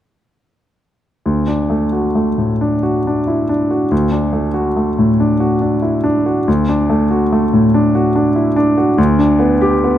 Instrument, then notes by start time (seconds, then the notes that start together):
grand piano
1.26 D2
1.47 D4
1.70 A3
1.92 F#4
2.15 A3
2.38 A2
2.61 D4
2.83 F#4
3.07 D4
3.27 E4
3.49 D4
3.71 F#4
3.91 D2
4.12 D4
4.33 A3
4.54 F#4
4.77 A3
4.98 A2
5.20 D4
5.40 F#4
5.61 D4
5.82 E4
6.04 D4
6.26 F#4
6.48 D2
6.69 D4
6.90 A3
7.11 F#4
7.32 A3
7.53 A2
7.74 D4
7.95 F#4
8.16 D4
8.35 E4
8.56 D4
8.78 F#4
8.98 D2
9.19 D4
9.39 B3
9.61 G4
9.84 B3